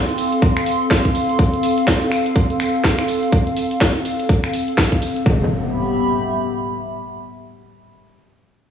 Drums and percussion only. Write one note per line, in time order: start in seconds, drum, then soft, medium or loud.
0.08 closed hi-hat soft
0.08 shaker soft
0.18 open hi-hat medium
0.18 shaker medium
0.32 closed hi-hat medium
0.32 shaker soft
0.42 kick loud
0.42 closed hi-hat medium
0.42 shaker soft
0.57 finger snap medium
0.57 closed hi-hat soft
0.57 shaker soft
0.66 open hi-hat loud
0.66 shaker medium
0.81 shaker soft
0.91 kick loud
0.91 snare loud
0.91 closed hi-hat medium
0.91 shaker soft
1.05 kick medium
1.05 closed hi-hat soft
1.05 shaker soft
1.15 open hi-hat medium
1.15 shaker medium
1.29 closed hi-hat soft
1.29 shaker soft
1.39 kick loud
1.39 closed hi-hat medium
1.39 shaker soft
1.54 closed hi-hat soft
1.54 shaker soft
1.63 open hi-hat loud
1.63 shaker medium
1.78 closed hi-hat medium
1.78 shaker soft
1.87 kick loud
1.87 snare loud
1.87 closed hi-hat medium
1.87 shaker soft
2.02 closed hi-hat soft
2.02 shaker soft
2.12 finger snap medium
2.12 open hi-hat medium
2.12 shaker medium
2.26 closed hi-hat medium
2.26 shaker soft
2.36 kick loud
2.36 closed hi-hat medium
2.36 shaker soft
2.50 closed hi-hat soft
2.50 shaker soft
2.60 finger snap medium
2.60 open hi-hat loud
2.60 shaker medium
2.75 shaker soft
2.84 kick loud
2.84 snare loud
2.84 closed hi-hat medium
2.84 shaker soft
2.99 finger snap medium
2.99 closed hi-hat soft
2.99 shaker soft
3.08 open hi-hat medium
3.08 shaker medium
3.23 closed hi-hat soft
3.23 shaker soft
3.33 kick loud
3.33 closed hi-hat medium
3.33 shaker soft
3.47 closed hi-hat soft
3.47 shaker soft
3.57 open hi-hat medium
3.57 shaker medium
3.71 closed hi-hat medium
3.71 shaker soft
3.81 kick loud
3.81 snare loud
3.81 closed hi-hat medium
3.81 shaker soft
3.95 closed hi-hat soft
3.95 shaker soft
4.05 open hi-hat medium
4.05 shaker medium
4.20 closed hi-hat medium
4.20 shaker soft
4.29 kick loud
4.29 closed hi-hat medium
4.29 shaker soft
4.44 finger snap medium
4.44 closed hi-hat soft
4.44 shaker soft
4.54 open hi-hat loud
4.54 shaker medium
4.68 closed hi-hat soft
4.68 shaker soft
4.78 kick loud
4.78 snare loud
4.78 closed hi-hat medium
4.78 shaker soft
4.92 kick medium
4.92 closed hi-hat soft
4.92 shaker soft
5.02 open hi-hat medium
5.02 shaker medium
5.16 closed hi-hat soft
5.16 shaker soft
5.26 kick loud